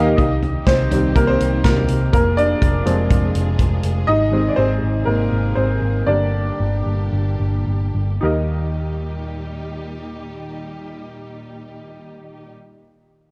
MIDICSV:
0, 0, Header, 1, 6, 480
1, 0, Start_track
1, 0, Key_signature, -3, "major"
1, 0, Tempo, 488599
1, 174, Time_signature, 4, 2, 24, 8
1, 4974, Tempo, 509338
1, 6414, Tempo, 547445
1, 7854, Tempo, 574163
1, 12100, End_track
2, 0, Start_track
2, 0, Title_t, "Upright piano"
2, 0, Program_c, 0, 0
2, 0, Control_c, 0, 64, 127
2, 0, Note_on_c, 0, 46, 60
2, 0, Note_on_c, 0, 58, 83
2, 0, Note_on_c, 0, 63, 77
2, 0, Note_on_c, 0, 67, 74
2, 0, Note_on_c, 0, 70, 67
2, 0, Note_on_c, 0, 75, 118
2, 0, Note_on_c, 0, 77, 100
2, 109, Note_off_c, 0, 58, 0
2, 113, Note_off_c, 0, 63, 0
2, 114, Note_off_c, 0, 67, 0
2, 114, Note_off_c, 0, 70, 0
2, 114, Note_off_c, 0, 77, 0
2, 166, Note_off_c, 0, 75, 0
2, 166, Note_on_c, 0, 75, 83
2, 181, Note_on_c, 0, 63, 68
2, 185, Control_c, 0, 64, 0
2, 192, Note_off_c, 0, 46, 0
2, 374, Control_c, 0, 64, 127
2, 615, Note_off_c, 0, 75, 0
2, 623, Note_off_c, 0, 63, 0
2, 654, Note_on_c, 0, 72, 98
2, 667, Note_on_c, 0, 60, 61
2, 893, Note_off_c, 0, 60, 0
2, 900, Note_on_c, 0, 51, 50
2, 903, Note_on_c, 0, 55, 47
2, 907, Note_on_c, 0, 60, 51
2, 1130, Note_on_c, 0, 70, 68
2, 1143, Note_on_c, 0, 58, 64
2, 1147, Note_off_c, 0, 72, 0
2, 1179, Note_off_c, 0, 70, 0
2, 1192, Note_off_c, 0, 58, 0
2, 1247, Note_off_c, 0, 60, 0
2, 1248, Note_on_c, 0, 72, 94
2, 1262, Note_on_c, 0, 60, 54
2, 1579, Note_off_c, 0, 51, 0
2, 1581, Note_off_c, 0, 55, 0
2, 1592, Note_off_c, 0, 60, 0
2, 1610, Note_on_c, 0, 70, 68
2, 1619, Note_on_c, 0, 58, 50
2, 1620, Note_off_c, 0, 72, 0
2, 2061, Note_off_c, 0, 58, 0
2, 2073, Note_off_c, 0, 70, 0
2, 2088, Note_on_c, 0, 70, 74
2, 2102, Note_on_c, 0, 58, 57
2, 2103, Control_c, 0, 64, 0
2, 2259, Control_c, 0, 64, 127
2, 2312, Note_off_c, 0, 70, 0
2, 2320, Note_off_c, 0, 58, 0
2, 2327, Note_on_c, 0, 74, 84
2, 2339, Note_on_c, 0, 62, 55
2, 2774, Note_off_c, 0, 74, 0
2, 2781, Note_off_c, 0, 62, 0
2, 2804, Note_on_c, 0, 53, 49
2, 2807, Note_on_c, 0, 56, 43
2, 2814, Note_on_c, 0, 60, 53
2, 3490, Note_off_c, 0, 53, 0
2, 3491, Note_off_c, 0, 56, 0
2, 3495, Note_off_c, 0, 60, 0
2, 4000, Note_on_c, 0, 75, 88
2, 4016, Note_on_c, 0, 63, 64
2, 4021, Control_c, 0, 64, 0
2, 4174, Control_c, 0, 64, 127
2, 4239, Note_on_c, 0, 51, 44
2, 4246, Note_on_c, 0, 56, 41
2, 4254, Note_on_c, 0, 60, 49
2, 4395, Note_off_c, 0, 63, 0
2, 4406, Note_on_c, 0, 74, 47
2, 4428, Note_off_c, 0, 75, 0
2, 4480, Note_off_c, 0, 60, 0
2, 4481, Note_on_c, 0, 72, 83
2, 4482, Note_off_c, 0, 74, 0
2, 4495, Note_on_c, 0, 60, 62
2, 4564, Note_off_c, 0, 51, 0
2, 4567, Note_off_c, 0, 56, 0
2, 4935, Note_off_c, 0, 72, 0
2, 4943, Note_off_c, 0, 60, 0
2, 4966, Note_on_c, 0, 70, 74
2, 4983, Note_on_c, 0, 58, 57
2, 5407, Note_off_c, 0, 70, 0
2, 5417, Note_off_c, 0, 58, 0
2, 5437, Note_on_c, 0, 72, 66
2, 5451, Note_on_c, 0, 60, 49
2, 5886, Note_off_c, 0, 72, 0
2, 5893, Note_off_c, 0, 60, 0
2, 5920, Note_on_c, 0, 50, 43
2, 5920, Note_on_c, 0, 74, 73
2, 5923, Note_on_c, 0, 55, 38
2, 5929, Note_on_c, 0, 58, 42
2, 5930, Note_on_c, 0, 62, 54
2, 5937, Control_c, 0, 64, 0
2, 6093, Control_c, 0, 64, 127
2, 7322, Note_off_c, 0, 74, 0
2, 7327, Note_off_c, 0, 62, 0
2, 7817, Note_off_c, 0, 50, 0
2, 7818, Note_off_c, 0, 55, 0
2, 7821, Note_off_c, 0, 58, 0
2, 7832, Note_on_c, 0, 63, 60
2, 7845, Note_on_c, 0, 67, 54
2, 7850, Note_on_c, 0, 39, 53
2, 7854, Note_on_c, 0, 70, 54
2, 7865, Control_c, 0, 64, 0
2, 7867, Note_on_c, 0, 75, 61
2, 8031, Control_c, 0, 64, 127
2, 11420, Note_off_c, 0, 63, 0
2, 11432, Note_off_c, 0, 67, 0
2, 11437, Note_off_c, 0, 39, 0
2, 11441, Note_off_c, 0, 70, 0
2, 11454, Note_off_c, 0, 75, 0
2, 12100, End_track
3, 0, Start_track
3, 0, Title_t, "Clean electric guitar"
3, 0, Program_c, 1, 27
3, 0, Note_on_c, 1, 51, 81
3, 0, Note_on_c, 1, 58, 93
3, 0, Note_on_c, 1, 63, 102
3, 0, Note_on_c, 1, 67, 91
3, 171, Note_off_c, 1, 51, 0
3, 173, Note_off_c, 1, 58, 0
3, 174, Note_off_c, 1, 63, 0
3, 177, Note_off_c, 1, 67, 0
3, 12100, End_track
4, 0, Start_track
4, 0, Title_t, "String section"
4, 0, Program_c, 2, 48
4, 0, Note_on_c, 2, 46, 71
4, 0, Note_on_c, 2, 51, 72
4, 0, Note_on_c, 2, 55, 69
4, 0, Note_on_c, 2, 63, 66
4, 0, Note_on_c, 2, 67, 86
4, 154, Note_off_c, 2, 55, 0
4, 154, Note_off_c, 2, 67, 0
4, 155, Note_off_c, 2, 46, 0
4, 165, Note_off_c, 2, 51, 0
4, 165, Note_off_c, 2, 63, 0
4, 175, Note_on_c, 2, 55, 53
4, 175, Note_on_c, 2, 63, 53
4, 176, Note_on_c, 2, 48, 61
4, 176, Note_on_c, 2, 51, 55
4, 177, Note_on_c, 2, 67, 69
4, 2072, Note_off_c, 2, 55, 0
4, 2072, Note_off_c, 2, 63, 0
4, 2073, Note_off_c, 2, 51, 0
4, 2073, Note_off_c, 2, 67, 0
4, 2096, Note_on_c, 2, 53, 53
4, 2096, Note_on_c, 2, 56, 55
4, 2098, Note_on_c, 2, 65, 50
4, 2098, Note_on_c, 2, 68, 62
4, 3992, Note_off_c, 2, 53, 0
4, 3993, Note_off_c, 2, 65, 0
4, 4006, Note_on_c, 2, 51, 50
4, 4008, Note_on_c, 2, 63, 55
4, 5887, Note_off_c, 2, 48, 0
4, 5889, Note_off_c, 2, 56, 0
4, 5890, Note_off_c, 2, 68, 0
4, 5904, Note_off_c, 2, 51, 0
4, 5905, Note_off_c, 2, 63, 0
4, 5921, Note_on_c, 2, 46, 56
4, 5922, Note_on_c, 2, 67, 57
4, 5924, Note_on_c, 2, 50, 48
4, 5925, Note_on_c, 2, 55, 43
4, 5925, Note_on_c, 2, 62, 50
4, 7833, Note_off_c, 2, 46, 0
4, 7834, Note_off_c, 2, 67, 0
4, 7835, Note_off_c, 2, 50, 0
4, 7835, Note_off_c, 2, 55, 0
4, 7835, Note_off_c, 2, 62, 0
4, 7856, Note_on_c, 2, 46, 51
4, 7856, Note_on_c, 2, 51, 46
4, 7856, Note_on_c, 2, 55, 47
4, 7857, Note_on_c, 2, 63, 47
4, 7859, Note_on_c, 2, 67, 55
4, 11442, Note_off_c, 2, 55, 0
4, 11443, Note_off_c, 2, 46, 0
4, 11443, Note_off_c, 2, 51, 0
4, 11444, Note_off_c, 2, 63, 0
4, 11445, Note_off_c, 2, 67, 0
4, 12100, End_track
5, 0, Start_track
5, 0, Title_t, "Picked electric bass"
5, 0, Program_c, 3, 34
5, 0, Note_on_c, 3, 39, 85
5, 136, Note_off_c, 3, 39, 0
5, 178, Note_on_c, 3, 36, 78
5, 569, Note_off_c, 3, 36, 0
5, 656, Note_on_c, 3, 36, 82
5, 851, Note_off_c, 3, 36, 0
5, 894, Note_on_c, 3, 36, 78
5, 1090, Note_off_c, 3, 36, 0
5, 1135, Note_on_c, 3, 36, 86
5, 1330, Note_off_c, 3, 36, 0
5, 1381, Note_on_c, 3, 36, 92
5, 1574, Note_off_c, 3, 36, 0
5, 1616, Note_on_c, 3, 36, 80
5, 1811, Note_off_c, 3, 36, 0
5, 1856, Note_on_c, 3, 36, 73
5, 2051, Note_off_c, 3, 36, 0
5, 2095, Note_on_c, 3, 29, 79
5, 2486, Note_off_c, 3, 29, 0
5, 2571, Note_on_c, 3, 29, 94
5, 2767, Note_off_c, 3, 29, 0
5, 2815, Note_on_c, 3, 29, 84
5, 3009, Note_off_c, 3, 29, 0
5, 3051, Note_on_c, 3, 29, 80
5, 3247, Note_off_c, 3, 29, 0
5, 3297, Note_on_c, 3, 29, 86
5, 3490, Note_off_c, 3, 29, 0
5, 3531, Note_on_c, 3, 29, 74
5, 3726, Note_off_c, 3, 29, 0
5, 3772, Note_on_c, 3, 29, 70
5, 3967, Note_off_c, 3, 29, 0
5, 4012, Note_on_c, 3, 32, 87
5, 4404, Note_off_c, 3, 32, 0
5, 4498, Note_on_c, 3, 32, 78
5, 4692, Note_off_c, 3, 32, 0
5, 4740, Note_on_c, 3, 32, 73
5, 4935, Note_off_c, 3, 32, 0
5, 4984, Note_on_c, 3, 32, 78
5, 5172, Note_off_c, 3, 32, 0
5, 5217, Note_on_c, 3, 32, 87
5, 5407, Note_off_c, 3, 32, 0
5, 5452, Note_on_c, 3, 32, 86
5, 5645, Note_off_c, 3, 32, 0
5, 5687, Note_on_c, 3, 32, 77
5, 5882, Note_off_c, 3, 32, 0
5, 5927, Note_on_c, 3, 31, 81
5, 6327, Note_off_c, 3, 31, 0
5, 6422, Note_on_c, 3, 31, 80
5, 6608, Note_off_c, 3, 31, 0
5, 6651, Note_on_c, 3, 31, 66
5, 6841, Note_off_c, 3, 31, 0
5, 6885, Note_on_c, 3, 31, 76
5, 7078, Note_off_c, 3, 31, 0
5, 7122, Note_on_c, 3, 31, 78
5, 7318, Note_off_c, 3, 31, 0
5, 7360, Note_on_c, 3, 31, 66
5, 7560, Note_off_c, 3, 31, 0
5, 7603, Note_on_c, 3, 31, 72
5, 7808, Note_off_c, 3, 31, 0
5, 7852, Note_on_c, 3, 39, 65
5, 11439, Note_off_c, 3, 39, 0
5, 12100, End_track
6, 0, Start_track
6, 0, Title_t, "Drums"
6, 178, Note_on_c, 9, 36, 100
6, 180, Note_on_c, 9, 42, 81
6, 276, Note_off_c, 9, 36, 0
6, 278, Note_off_c, 9, 42, 0
6, 417, Note_on_c, 9, 43, 54
6, 422, Note_on_c, 9, 42, 57
6, 515, Note_off_c, 9, 43, 0
6, 520, Note_off_c, 9, 42, 0
6, 655, Note_on_c, 9, 36, 101
6, 659, Note_on_c, 9, 38, 91
6, 660, Note_on_c, 9, 42, 73
6, 753, Note_off_c, 9, 36, 0
6, 757, Note_off_c, 9, 38, 0
6, 758, Note_off_c, 9, 42, 0
6, 897, Note_on_c, 9, 43, 56
6, 898, Note_on_c, 9, 42, 78
6, 995, Note_off_c, 9, 43, 0
6, 996, Note_off_c, 9, 42, 0
6, 1134, Note_on_c, 9, 36, 95
6, 1136, Note_on_c, 9, 42, 82
6, 1232, Note_off_c, 9, 36, 0
6, 1235, Note_off_c, 9, 42, 0
6, 1377, Note_on_c, 9, 42, 71
6, 1475, Note_off_c, 9, 42, 0
6, 1613, Note_on_c, 9, 36, 94
6, 1613, Note_on_c, 9, 38, 90
6, 1613, Note_on_c, 9, 42, 71
6, 1711, Note_off_c, 9, 36, 0
6, 1711, Note_off_c, 9, 38, 0
6, 1711, Note_off_c, 9, 42, 0
6, 1733, Note_on_c, 9, 43, 52
6, 1832, Note_off_c, 9, 43, 0
6, 1848, Note_on_c, 9, 42, 72
6, 1946, Note_off_c, 9, 42, 0
6, 2093, Note_on_c, 9, 36, 102
6, 2093, Note_on_c, 9, 42, 75
6, 2191, Note_off_c, 9, 42, 0
6, 2192, Note_off_c, 9, 36, 0
6, 2337, Note_on_c, 9, 42, 49
6, 2435, Note_off_c, 9, 42, 0
6, 2572, Note_on_c, 9, 36, 94
6, 2576, Note_on_c, 9, 42, 75
6, 2670, Note_off_c, 9, 36, 0
6, 2674, Note_off_c, 9, 42, 0
6, 2813, Note_on_c, 9, 42, 73
6, 2911, Note_off_c, 9, 42, 0
6, 3049, Note_on_c, 9, 42, 87
6, 3050, Note_on_c, 9, 36, 97
6, 3148, Note_off_c, 9, 36, 0
6, 3148, Note_off_c, 9, 42, 0
6, 3289, Note_on_c, 9, 42, 72
6, 3388, Note_off_c, 9, 42, 0
6, 3527, Note_on_c, 9, 42, 72
6, 3529, Note_on_c, 9, 36, 81
6, 3625, Note_off_c, 9, 42, 0
6, 3627, Note_off_c, 9, 36, 0
6, 3764, Note_on_c, 9, 42, 72
6, 3863, Note_off_c, 9, 42, 0
6, 12100, End_track
0, 0, End_of_file